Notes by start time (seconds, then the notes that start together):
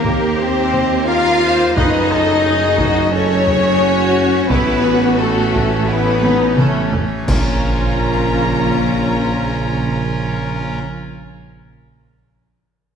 Already playing: D#2 A#3 G4 A#4 D#5
0.05 taiko
0.36 C4 C5
0.74 taiko low
1.06 F4 A#4 F5
1.42 C5
1.75 F#1 F#2 A3 C#4 D#4 F#4 B4 C#5 D#5, taiko
2.10 A4, taiko rim
2.44 G#4
2.78 F#4, taiko
3.11 C#4 A4 C#5
3.47 G#4, taiko low
3.81 F#4
4.49 A1 E3 B3 E4 B4, taiko
4.84 F#4
5.19 A3 A4
5.54 taiko
5.87 B3 E4 B4
6.22 D#4, taiko high
6.56 A3 C#4 A4, taiko mid
6.93 taiko low
7.26 A#1 C#3 A#3 C#4 F4 A#4 C#5 A#5, concert bass drum, taiko, crash